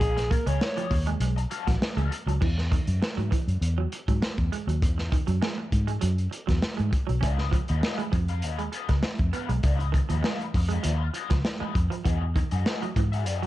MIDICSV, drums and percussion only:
0, 0, Header, 1, 2, 480
1, 0, Start_track
1, 0, Tempo, 602410
1, 10, Time_signature, 4, 2, 24, 8
1, 10730, End_track
2, 0, Start_track
2, 0, Title_t, "Drums"
2, 8, Note_on_c, 9, 36, 113
2, 11, Note_on_c, 9, 42, 85
2, 88, Note_off_c, 9, 36, 0
2, 91, Note_off_c, 9, 42, 0
2, 136, Note_on_c, 9, 38, 34
2, 138, Note_on_c, 9, 42, 54
2, 216, Note_off_c, 9, 38, 0
2, 218, Note_off_c, 9, 42, 0
2, 247, Note_on_c, 9, 36, 102
2, 257, Note_on_c, 9, 42, 79
2, 327, Note_off_c, 9, 36, 0
2, 337, Note_off_c, 9, 42, 0
2, 373, Note_on_c, 9, 42, 68
2, 453, Note_off_c, 9, 42, 0
2, 489, Note_on_c, 9, 38, 125
2, 568, Note_off_c, 9, 38, 0
2, 617, Note_on_c, 9, 42, 58
2, 697, Note_off_c, 9, 42, 0
2, 724, Note_on_c, 9, 36, 98
2, 727, Note_on_c, 9, 46, 81
2, 804, Note_off_c, 9, 36, 0
2, 807, Note_off_c, 9, 46, 0
2, 850, Note_on_c, 9, 42, 53
2, 930, Note_off_c, 9, 42, 0
2, 960, Note_on_c, 9, 42, 107
2, 1040, Note_off_c, 9, 42, 0
2, 1098, Note_on_c, 9, 42, 52
2, 1177, Note_off_c, 9, 42, 0
2, 1203, Note_on_c, 9, 42, 75
2, 1283, Note_off_c, 9, 42, 0
2, 1335, Note_on_c, 9, 36, 97
2, 1337, Note_on_c, 9, 42, 57
2, 1340, Note_on_c, 9, 38, 38
2, 1414, Note_off_c, 9, 36, 0
2, 1416, Note_off_c, 9, 42, 0
2, 1419, Note_off_c, 9, 38, 0
2, 1451, Note_on_c, 9, 38, 112
2, 1531, Note_off_c, 9, 38, 0
2, 1576, Note_on_c, 9, 42, 41
2, 1656, Note_off_c, 9, 42, 0
2, 1689, Note_on_c, 9, 42, 79
2, 1769, Note_off_c, 9, 42, 0
2, 1820, Note_on_c, 9, 42, 50
2, 1899, Note_off_c, 9, 42, 0
2, 1926, Note_on_c, 9, 36, 121
2, 1928, Note_on_c, 9, 49, 94
2, 2006, Note_off_c, 9, 36, 0
2, 2008, Note_off_c, 9, 49, 0
2, 2057, Note_on_c, 9, 38, 35
2, 2137, Note_off_c, 9, 38, 0
2, 2166, Note_on_c, 9, 36, 97
2, 2174, Note_on_c, 9, 42, 76
2, 2246, Note_off_c, 9, 36, 0
2, 2253, Note_off_c, 9, 42, 0
2, 2290, Note_on_c, 9, 42, 56
2, 2369, Note_off_c, 9, 42, 0
2, 2410, Note_on_c, 9, 38, 122
2, 2490, Note_off_c, 9, 38, 0
2, 2543, Note_on_c, 9, 42, 36
2, 2622, Note_off_c, 9, 42, 0
2, 2646, Note_on_c, 9, 36, 94
2, 2651, Note_on_c, 9, 42, 89
2, 2726, Note_off_c, 9, 36, 0
2, 2731, Note_off_c, 9, 42, 0
2, 2776, Note_on_c, 9, 42, 49
2, 2856, Note_off_c, 9, 42, 0
2, 2886, Note_on_c, 9, 42, 99
2, 2966, Note_off_c, 9, 42, 0
2, 3124, Note_on_c, 9, 42, 78
2, 3204, Note_off_c, 9, 42, 0
2, 3252, Note_on_c, 9, 36, 85
2, 3255, Note_on_c, 9, 42, 56
2, 3332, Note_off_c, 9, 36, 0
2, 3334, Note_off_c, 9, 42, 0
2, 3366, Note_on_c, 9, 38, 106
2, 3446, Note_off_c, 9, 38, 0
2, 3487, Note_on_c, 9, 42, 32
2, 3491, Note_on_c, 9, 36, 83
2, 3567, Note_off_c, 9, 42, 0
2, 3570, Note_off_c, 9, 36, 0
2, 3606, Note_on_c, 9, 42, 80
2, 3686, Note_off_c, 9, 42, 0
2, 3736, Note_on_c, 9, 42, 50
2, 3815, Note_off_c, 9, 42, 0
2, 3844, Note_on_c, 9, 36, 114
2, 3850, Note_on_c, 9, 42, 94
2, 3924, Note_off_c, 9, 36, 0
2, 3930, Note_off_c, 9, 42, 0
2, 3971, Note_on_c, 9, 38, 35
2, 4051, Note_off_c, 9, 38, 0
2, 4082, Note_on_c, 9, 36, 91
2, 4090, Note_on_c, 9, 42, 81
2, 4161, Note_off_c, 9, 36, 0
2, 4169, Note_off_c, 9, 42, 0
2, 4203, Note_on_c, 9, 42, 61
2, 4283, Note_off_c, 9, 42, 0
2, 4322, Note_on_c, 9, 38, 109
2, 4402, Note_off_c, 9, 38, 0
2, 4560, Note_on_c, 9, 36, 91
2, 4561, Note_on_c, 9, 42, 78
2, 4640, Note_off_c, 9, 36, 0
2, 4641, Note_off_c, 9, 42, 0
2, 4684, Note_on_c, 9, 42, 49
2, 4763, Note_off_c, 9, 42, 0
2, 4792, Note_on_c, 9, 42, 99
2, 4871, Note_off_c, 9, 42, 0
2, 4926, Note_on_c, 9, 42, 38
2, 5006, Note_off_c, 9, 42, 0
2, 5040, Note_on_c, 9, 42, 72
2, 5120, Note_off_c, 9, 42, 0
2, 5169, Note_on_c, 9, 36, 87
2, 5169, Note_on_c, 9, 42, 50
2, 5172, Note_on_c, 9, 38, 40
2, 5248, Note_off_c, 9, 36, 0
2, 5249, Note_off_c, 9, 42, 0
2, 5252, Note_off_c, 9, 38, 0
2, 5278, Note_on_c, 9, 38, 103
2, 5358, Note_off_c, 9, 38, 0
2, 5408, Note_on_c, 9, 42, 32
2, 5488, Note_off_c, 9, 42, 0
2, 5520, Note_on_c, 9, 36, 102
2, 5520, Note_on_c, 9, 42, 71
2, 5599, Note_off_c, 9, 36, 0
2, 5600, Note_off_c, 9, 42, 0
2, 5649, Note_on_c, 9, 42, 51
2, 5729, Note_off_c, 9, 42, 0
2, 5759, Note_on_c, 9, 36, 112
2, 5759, Note_on_c, 9, 42, 89
2, 5838, Note_off_c, 9, 42, 0
2, 5839, Note_off_c, 9, 36, 0
2, 5883, Note_on_c, 9, 38, 34
2, 5963, Note_off_c, 9, 38, 0
2, 5998, Note_on_c, 9, 36, 97
2, 6003, Note_on_c, 9, 42, 78
2, 6077, Note_off_c, 9, 36, 0
2, 6083, Note_off_c, 9, 42, 0
2, 6120, Note_on_c, 9, 42, 55
2, 6200, Note_off_c, 9, 42, 0
2, 6240, Note_on_c, 9, 38, 123
2, 6320, Note_off_c, 9, 38, 0
2, 6368, Note_on_c, 9, 42, 36
2, 6448, Note_off_c, 9, 42, 0
2, 6476, Note_on_c, 9, 42, 83
2, 6477, Note_on_c, 9, 36, 105
2, 6556, Note_off_c, 9, 42, 0
2, 6557, Note_off_c, 9, 36, 0
2, 6600, Note_on_c, 9, 42, 53
2, 6679, Note_off_c, 9, 42, 0
2, 6711, Note_on_c, 9, 42, 103
2, 6790, Note_off_c, 9, 42, 0
2, 6843, Note_on_c, 9, 42, 39
2, 6922, Note_off_c, 9, 42, 0
2, 6952, Note_on_c, 9, 42, 82
2, 7032, Note_off_c, 9, 42, 0
2, 7081, Note_on_c, 9, 42, 49
2, 7084, Note_on_c, 9, 38, 37
2, 7086, Note_on_c, 9, 36, 86
2, 7161, Note_off_c, 9, 42, 0
2, 7164, Note_off_c, 9, 38, 0
2, 7165, Note_off_c, 9, 36, 0
2, 7193, Note_on_c, 9, 38, 105
2, 7272, Note_off_c, 9, 38, 0
2, 7317, Note_on_c, 9, 42, 31
2, 7325, Note_on_c, 9, 36, 79
2, 7396, Note_off_c, 9, 42, 0
2, 7405, Note_off_c, 9, 36, 0
2, 7436, Note_on_c, 9, 42, 84
2, 7515, Note_off_c, 9, 42, 0
2, 7564, Note_on_c, 9, 42, 50
2, 7644, Note_off_c, 9, 42, 0
2, 7675, Note_on_c, 9, 42, 87
2, 7679, Note_on_c, 9, 36, 123
2, 7754, Note_off_c, 9, 42, 0
2, 7758, Note_off_c, 9, 36, 0
2, 7809, Note_on_c, 9, 42, 38
2, 7888, Note_off_c, 9, 42, 0
2, 7920, Note_on_c, 9, 36, 97
2, 7924, Note_on_c, 9, 42, 77
2, 7999, Note_off_c, 9, 36, 0
2, 8003, Note_off_c, 9, 42, 0
2, 8044, Note_on_c, 9, 42, 61
2, 8124, Note_off_c, 9, 42, 0
2, 8160, Note_on_c, 9, 38, 127
2, 8239, Note_off_c, 9, 38, 0
2, 8293, Note_on_c, 9, 42, 35
2, 8373, Note_off_c, 9, 42, 0
2, 8401, Note_on_c, 9, 36, 95
2, 8403, Note_on_c, 9, 46, 89
2, 8480, Note_off_c, 9, 36, 0
2, 8483, Note_off_c, 9, 46, 0
2, 8525, Note_on_c, 9, 42, 50
2, 8605, Note_off_c, 9, 42, 0
2, 8633, Note_on_c, 9, 42, 110
2, 8713, Note_off_c, 9, 42, 0
2, 8877, Note_on_c, 9, 42, 84
2, 8957, Note_off_c, 9, 42, 0
2, 9006, Note_on_c, 9, 42, 53
2, 9009, Note_on_c, 9, 38, 35
2, 9010, Note_on_c, 9, 36, 99
2, 9085, Note_off_c, 9, 42, 0
2, 9088, Note_off_c, 9, 38, 0
2, 9090, Note_off_c, 9, 36, 0
2, 9121, Note_on_c, 9, 38, 109
2, 9201, Note_off_c, 9, 38, 0
2, 9365, Note_on_c, 9, 36, 102
2, 9367, Note_on_c, 9, 42, 73
2, 9444, Note_off_c, 9, 36, 0
2, 9446, Note_off_c, 9, 42, 0
2, 9496, Note_on_c, 9, 42, 52
2, 9575, Note_off_c, 9, 42, 0
2, 9605, Note_on_c, 9, 36, 109
2, 9607, Note_on_c, 9, 42, 94
2, 9685, Note_off_c, 9, 36, 0
2, 9687, Note_off_c, 9, 42, 0
2, 9846, Note_on_c, 9, 36, 100
2, 9852, Note_on_c, 9, 42, 75
2, 9926, Note_off_c, 9, 36, 0
2, 9932, Note_off_c, 9, 42, 0
2, 9970, Note_on_c, 9, 42, 64
2, 10050, Note_off_c, 9, 42, 0
2, 10088, Note_on_c, 9, 38, 115
2, 10167, Note_off_c, 9, 38, 0
2, 10218, Note_on_c, 9, 42, 38
2, 10298, Note_off_c, 9, 42, 0
2, 10328, Note_on_c, 9, 36, 92
2, 10330, Note_on_c, 9, 42, 82
2, 10408, Note_off_c, 9, 36, 0
2, 10409, Note_off_c, 9, 42, 0
2, 10462, Note_on_c, 9, 42, 51
2, 10542, Note_off_c, 9, 42, 0
2, 10566, Note_on_c, 9, 42, 99
2, 10646, Note_off_c, 9, 42, 0
2, 10701, Note_on_c, 9, 42, 37
2, 10730, Note_off_c, 9, 42, 0
2, 10730, End_track
0, 0, End_of_file